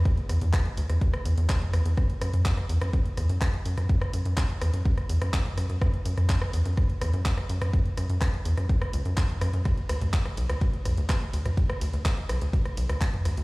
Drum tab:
RD |----------------|----------------|----------------|----------------|
HH |xxoxxxoxxxoxxxox|xxoxxxoxxxoxxxox|xxoxxxoxxxox-xox|xxoxxxoxxxoxxxox|
CP |----x-------x---|----x-------x---|----x-------x---|----x-------x---|
SD |--r-r--r-r--r-r-|r-r--r-r--r-r--r|-r--r-r--r-r--r-|r--r-r--r-r--r-r|
T2 |---o---------o--|---o------o----o|-------------o--|---o------o----o|
BD |o---o---o---o---|o---o---o---o---|o---o---o---o---|o---o---o---o---|

RD |----------------|x-x-x-x-x-x-x-x-|x-x-x-x-x-x-x-x-|
HH |xxoxxxoxxxoxxxox|xxoxxxoxxxoxxxox|xxoxxxoxxxoxxxox|
CP |----x-------x---|----x-------x---|----x-------x---|
SD |--r-r--r-r--r-r-|r-r--r-r--r-r--r|-r--r-r--r-r--r-|
T2 |-------------o--|---o------o----o|-------------o--|
BD |o---o---o---o---|o---o---o---o---|o---o---o---o---|